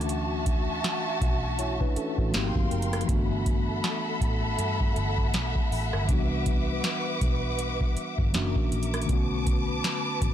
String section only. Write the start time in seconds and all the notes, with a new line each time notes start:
Already playing: F#4 E5 A5
2.34 A#4 F5 G5 C6
3.09 A4 E5 F#5 B5
6.09 B4 D6
8.34 A#4 E5 D6
9.09 B4 A5